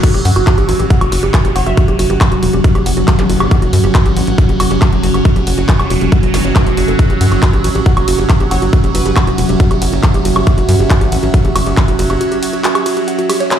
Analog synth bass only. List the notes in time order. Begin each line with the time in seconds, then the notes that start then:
0.14 F#1
0.25 F#2
0.36 F#1
0.58 A1
0.69 A1
0.80 A1
1.01 F#1
1.12 F#1
1.23 F#1
1.45 F#1
1.56 F#1
1.66 F#1
1.88 F#1
1.99 F#1
2.10 F#1
2.32 E1
2.43 E1
2.53 E1
2.75 F#1
2.86 F#1
2.97 F#1
3.19 F#1
3.30 F#1
3.40 F#1
3.62 F#1
3.73 F#2
3.84 F#1
4.06 A1
4.16 A1
4.27 A1
4.49 F#1
4.60 F#1
4.71 F#1
4.93 F#1
5.03 F#1
5.14 F#1
5.36 F#1
5.47 F#1
5.58 F#1
5.79 E1
5.90 E1
6.01 E1
6.23 F#1
6.34 F#1
6.45 F#1
6.66 F#1
6.77 F#1
6.88 F#1
7.10 F#1
7.21 F#2
7.32 F#1
7.53 A1
7.64 A1
7.75 A1
7.97 F#1
8.08 F#1
8.19 F#1
8.40 F#1
8.51 F#1
8.62 F#1
8.84 F#1
8.95 F#1
9.06 F#1
9.27 E1
9.38 E1
9.49 E1
9.71 F#1
9.82 F#1
9.93 F#1
10.14 F#1
10.25 F#1
10.36 F#1
10.58 F#1
10.69 F#2
10.79 F#1
11.01 A1
11.12 A1
11.23 A1
11.45 F#1
11.56 F#1
11.66 F#1
11.88 F#1
11.99 F#1
12.10 F#1